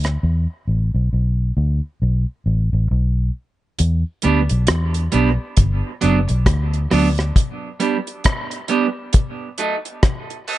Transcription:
Already playing: D2
0.04 cross-stick, closed hi-hat
0.23 E2
0.67 A1
0.94 B1
1.13 B1
1.57 D2
2.02 B1
2.46 A1
2.73 A1
2.91 B1
3.79 E2, closed hi-hat
4.22 D2 G3 B3 D4, closed hi-hat
4.49 B1, closed hi-hat
4.67 E2, cross-stick, closed hi-hat
4.94 closed hi-hat
5.12 B1 G3 B3 D4, closed hi-hat
5.57 G1, kick, closed hi-hat
6.01 F#1 F#3 B3 D4, closed hi-hat
6.28 B1, muted clean electric guitar stroke, closed hi-hat
6.46 D2, kick, cross-stick, closed hi-hat
6.74 closed hi-hat
6.91 D2 F#3 B3 D4, cross-stick, open hi-hat
7.18 cross-stick, closed hi-hat
7.36 kick, closed hi-hat
7.80 G3 B3 D4, closed hi-hat
8.07 closed hi-hat
8.24 kick, cross-stick, closed hi-hat
8.51 closed hi-hat
8.68 G3 B3 D4, closed hi-hat
9.13 kick, closed hi-hat
9.58 F#3 A3 D#4, closed hi-hat
9.85 muted clean electric guitar stroke, closed hi-hat
10.03 kick, cross-stick, closed hi-hat
10.30 closed hi-hat
10.48 F#3 A3 D#4, open hi-hat

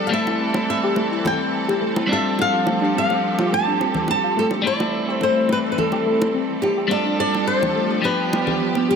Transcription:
Already playing: F3 A4
0.07 G3 A3 F5
0.12 E3 A3 C4 E4 A4 E5
0.27 E4, high bongo
0.40 C4
0.54 high bongo
0.70 E5
0.84 G4
0.96 A3, high bongo
1.11 E4
1.25 C4 G5, high bongo, low conga
1.68 G4, high bongo
1.81 A3
1.96 E4, high bongo
2.06 G3 C4 D4
2.11 F3 F4 G4 A4 E5
2.39 F5, high bongo
2.53 F4
2.66 A3, high bongo
2.81 D4
2.95 C4 F5
3.10 high bongo
3.38 F4, high bongo
3.52 A3 A5
3.67 D4
3.81 C4, high bongo
3.95 low conga
4.08 A5, high bongo
4.24 F4
4.37 A3 A4
4.51 D4, high bongo
4.62 E3 G3 A3 C4
4.66 E4 A4 D5
4.80 high bongo
5.09 G4 C5
5.21 A3 C5, high bongo
5.37 E4
5.49 C4 B4, high bongo
5.72 B4
5.78 A4, low conga
5.92 G4, high bongo
6.06 A3
6.21 E4, high bongo
6.34 C4
6.62 G4, high bongo
6.77 G4
6.88 F3 G3 A3 C4 D4 G4 A4 D5, high bongo
6.92 F4 A4
7.06 D4
7.19 C4 D5
7.34 high bongo
7.47 C5
7.62 F4, high bongo, low conga
7.76 A3
7.91 D4
8.02 F3 G3 B3 D4 G4 B4, high bongo
8.07 G4
8.33 high bongo
8.47 G4, low conga
8.61 D4
8.75 B3, high bongo
8.88 G4

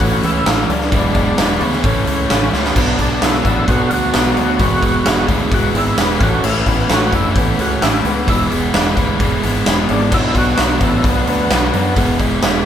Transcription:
Already playing: A2 E3 A3 C#4 E4 F#4
0.00 A1 E3 A3 C#4 E4, kick, open hi-hat
0.23 C#2 E3 A3 C#4 E4, open hi-hat
0.46 A1 E3 A3 C#4 E4, snare, open hi-hat
0.69 C#2 A2 E3 F#3 A3 C#4 D4 E4, open hi-hat
0.81 snare
0.92 E1 E2 B2 E3 G#3 B3 E4, kick, open hi-hat
1.15 E1 E3 G#3 B3 E4, kick, open hi-hat
1.38 E1 E3 G#3 B3 E4, snare, open hi-hat
1.61 D2 E2 B2 C#3 E3 G#3 B3 C#4 E4, open hi-hat
1.72 snare
1.84 A1 A2 E3 A3 C#4 E4, kick, open hi-hat
2.07 C#2 A3 C#4 E4, open hi-hat
2.30 A1 E3 A3 C#4 E4, snare, open hi-hat
2.53 C#2 A2 E3 A3 C#4 E4, snare
2.64 snare
2.76 B1 B2 F#3 B3 D4 F#4, kick, crash
2.99 B1 B3 D4 F#4, kick, open hi-hat
3.22 B1 F#3 B3 D4 E4 F#4, snare, open hi-hat
3.34 snare
3.45 A1 B2 F#3 B3 D4 F#4, kick, open hi-hat
3.68 B1 F#3 B3 D4 F#4, kick, open hi-hat
3.89 D2 B3 D4 F4 F#4, open hi-hat
3.94 F#4
4.13 B1 F#3 B3 D4 F#4, snare, open hi-hat
4.36 D2 B2 F#3 B3 D4 F#4, open hi-hat
4.59 E1 E2 B2 E3 G#3 B3 E4, kick, open hi-hat
4.82 E1 E3 G#3 B3 E4, kick, open hi-hat
5.05 E1 E3 G#3 B3 E4, snare, open hi-hat
5.17 snare
5.28 D2 E2 B2 E3 G#3 B3 E4, kick, open hi-hat
5.51 E1 E3 G#3 B3 E4 F#4, kick, open hi-hat
5.74 G#1 E3 G#3 B3 E4, open hi-hat
5.96 E1 E3 G#3 B3 E4, snare, open hi-hat
6.19 A1 A2 E3 A3 C#4 E4 F4, kick, open hi-hat
6.23 F#4
6.43 A1 A2 E3 A3 C#4 E4, crash
6.66 A1 A3 B3 C#4 E4, kick, open hi-hat
6.88 A1 A2 E3 A3 C#4 F4, snare, open hi-hat
6.92 E4 F#4
7.01 snare
7.12 F#1 A2 E3 A3 C#4 E4, kick, open hi-hat
7.36 A1 E3 A3 B3 C#4 E4, kick, open hi-hat
7.59 C#2 A3 C#4 E4 F#4, open hi-hat
7.82 A1 E3 A3 C#4 E4, snare, open hi-hat
8.05 C#2 A2 E3 A3 B3 C#4 E4, open hi-hat
8.27 E1 E2 B2 E3 G#3 B3 E4, kick, open hi-hat
8.50 E1 E3 G#3 B3 E4, open hi-hat
8.72 E1 E3 G#3 B3 E4, snare, open hi-hat
8.97 D2 E2 B2 E3 G#3 B3 E4, kick, open hi-hat
9.20 E1 E3 G#3 B3 E4, kick, open hi-hat
9.43 G#1 E3 G#3 B3 E4, open hi-hat
9.66 E1 E3 G#3 B3 E4, snare, open hi-hat
9.89 G#1 E2 B2 E3 G#3 B3 D4 E4, open hi-hat
10.12 B1 B2 F#3 B3 D4 E4 F#4, kick, crash
10.34 B1 B3 D4 F4 F#4, kick, open hi-hat
10.38 F#4
10.57 B1 F#3 B3 D4 F#4, snare, open hi-hat
10.80 A1 B2 F#3 B3 D4 E4 F#4, kick, open hi-hat
11.04 B1 F#3 B3 D4 F#4, kick, open hi-hat
11.27 D2 B3 D4 F#4, open hi-hat
11.50 B1 F#3 B3 D4 F#4, snare, open hi-hat
11.73 F#2 B2 F#3 B3 D4 F#4, open hi-hat
11.96 E1 E2 B2 E3 G#3 B3 E4, kick, open hi-hat
12.20 E1 E3 G#3 B3 E4, kick, open hi-hat
12.42 E1 E3 G#3 B3 E4, snare, open hi-hat

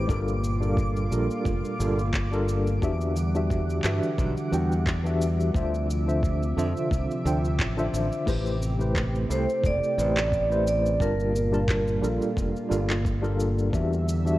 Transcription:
Already playing: D6
0.07 G1 A#2 G3 D4 F4 A4 A#4, kick, shaker
0.28 shaker
0.44 shaker
0.60 G3 D4 F4 A4 A#4, shaker
0.77 kick, shaker
0.96 shaker
1.11 A#1 G3 D4 F4 A4 A#4, shaker
1.31 shaker
1.45 F1, kick, shaker
1.65 shaker
1.79 G1 G3 D4 F4 A4 A#4, shaker
1.99 shaker
2.14 kick, clap, shaker
2.31 G3 D4 F4 A4 A#4, shaker
2.48 shaker
2.67 shaker
2.81 E2 D3 E3 G3 D4 F#4 G4 E5 F#5, kick, shaker
3.01 shaker
3.16 shaker
3.34 E3 D4 F#4 G4 E5, shaker
3.50 kick, shaker
3.70 shaker
3.83 G2 E3 D4 F#4 G4 E5, clap, shaker
4.03 shaker
4.18 B1, kick, shaker
4.37 shaker
4.51 E2 E3 D4 F#4 G4 G5, shaker
4.72 shaker
4.86 kick, clap, shaker
5.04 E3 D4 F#4 G4 E5, shaker
5.21 shaker
5.40 shaker
5.53 D2 C3 D3 F3 D4 F4 C5 E5, kick, shaker
5.75 shaker
5.90 shaker
6.06 D3 D4 F4 C5 E5, shaker
6.23 kick, shaker
6.43 shaker
6.56 F2 D3 D4 F4 C5 E5, shaker
6.77 shaker
6.91 C2, kick, shaker
7.11 shaker
7.24 D2 D3 D4 F4 C5 G5, shaker
7.45 shaker
7.59 A1, kick, clap, shaker
7.77 D3 D4 F4 C5 E5, shaker
7.94 A1, shaker
8.13 shaker
8.26 A1 C3 A3 E4 G4 B4 C5, kick, crash, shaker
8.47 shaker
8.62 shaker
8.79 A3 E4 G4 B4 C5, shaker
8.96 kick, clap, shaker
9.15 shaker
9.29 C2 A3 E4 G4 A4 C5, shaker
9.50 shaker
9.64 E1 D5, kick, shaker
9.84 shaker
9.97 A1 A3 E4 G4 B4 C5, shaker
10.17 clap, shaker
10.32 kick, shaker
10.49 A3 E4 G4 B4 C5, shaker
10.67 D5, shaker
10.86 shaker
10.99 G1 A#2 G3 D4 F4 A#4 A5, kick, shaker
11.20 shaker
11.36 shaker
11.52 G3 D4 F4 A#4 A5, shaker
11.68 kick, clap, shaker
11.88 shaker
12.01 A#1 G3 D4 F4 A4 A#4, shaker
12.22 shaker
12.37 F1, kick, shaker
12.56 shaker
12.69 G1 G3 D4 F4 A4 A#4, shaker
12.90 clap, shaker
13.05 kick, shaker
13.21 G3 D4 F4 A4 A#4, shaker
13.40 shaker
13.58 shaker
13.72 E2 D3 E3 G3 D4 F#4 G4 E5, kick, shaker
13.93 shaker
14.09 shaker
14.25 E3 D4 F#4 G4 E5, shaker

